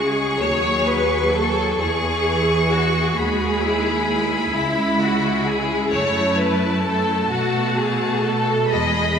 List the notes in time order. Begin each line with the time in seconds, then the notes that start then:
Already playing: C#2 G#3 G#4 C#6
0.41 D#2 F#3 C#5
0.87 B4
1.34 A4
1.80 E2 E3 G#4 C#6
2.71 F#4
3.17 D#2 G#3 F#4 G#4 B5
3.63 E4
4.09 E4
4.55 C#2 G#3 E4
5.02 F#4
5.47 G#4
5.93 F#2 A3 C#5 A5
6.39 B4
6.85 A4
7.30 B2 F#4
7.77 G#4
8.24 A4
8.71 E2 G#3 G#4 D#5 B5